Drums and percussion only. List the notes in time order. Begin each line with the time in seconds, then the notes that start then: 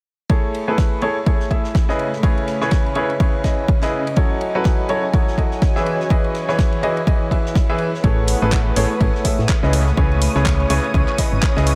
0.30 kick, ride
0.55 ride
0.78 kick, snare, ride
1.02 ride
1.26 kick, ride
1.40 snare
1.51 kick, ride
1.64 snare
1.75 kick, snare, ride
1.89 snare
1.99 ride
2.13 snare
2.23 kick, ride
2.38 ride
2.48 snare, ride
2.61 snare
2.71 kick, snare, ride
2.86 ride
2.95 ride
3.10 ride
3.20 kick, ride
3.44 kick, snare, ride
3.68 kick, ride
3.82 snare, ride
4.07 ride
4.16 kick, ride
4.41 ride
4.64 kick, snare, ride
4.89 ride
5.14 kick, ride
5.28 snare
5.38 kick, ride
5.51 snare
5.62 kick, snare, ride
5.76 snare
5.86 ride
6.00 snare
6.10 kick, ride
6.24 ride
6.35 snare, ride
6.49 snare
6.59 kick, snare, ride
6.72 ride
6.83 ride
6.97 ride
7.07 kick, ride
7.31 kick, ride
7.46 snare
7.55 kick, snare, ride
7.78 ride
7.94 snare
8.04 kick, ride
8.27 open hi-hat, ride
8.52 kick, snare, clap, ride
8.76 open hi-hat, ride
9.01 kick, ride
9.15 snare
9.25 kick, open hi-hat, ride
9.39 snare
9.49 kick, snare, clap, ride
9.63 snare
9.73 open hi-hat, ride
9.86 snare
9.97 kick, ride
10.11 ride
10.21 snare, open hi-hat, ride
10.36 snare
10.46 kick, snare, clap, ride
10.60 ride
10.70 open hi-hat, ride
10.84 ride
10.94 kick, ride
11.08 clap
11.18 kick, snare, open hi-hat, ride
11.43 kick, clap
11.57 snare, ride
11.67 open hi-hat